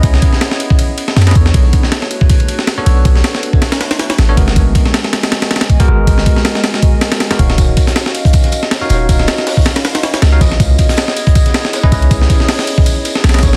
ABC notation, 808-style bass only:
X:1
M:4/4
L:1/8
Q:"Swing 16ths" 1/4=159
K:Dbdor
V:1 name="808-style bass" clef=bass
D,, z4 z G,, F,, | =B,,, z6 B,,, | =B,,, z4 z =A,,, ^F,,, | A,,, z6 A,,, |
A,,, z6 E,,, | E,,, z6 E,,, | E,,, z4 z D,, B,,, | D,, z6 D,, |
D,, z4 z C,, A,,, |]